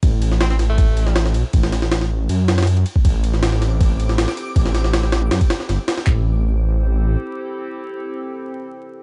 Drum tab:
RD |x---x---x---x---x---x---x---x---|x---x---x-------x---x-xxx-x-x---|x---x---x---x---x---x---x---x---|x---x---x---x---x-x-x---x---x---|
CP |--------------------------------|--------------------------------|--------------------------------|--------------------------------|
SD |------o-o-o-o---------o-o-o-----|--o-o-o-o-o---------o-oo--------|------o-o-o-o---------o-o-o-----|--o-o-o-o-o-o---o---o-o-o---o-o-|
BD |o---------------o---------------|o-----------------------------o-|o---------------o---------------|o-----------------o-------------|

RD |--------------------------------|--------------------------------|
CP |x-------------------------------|--------------------------------|
SD |--------------------------------|--------------------------------|
BD |o-------------------------------|--------------------------------|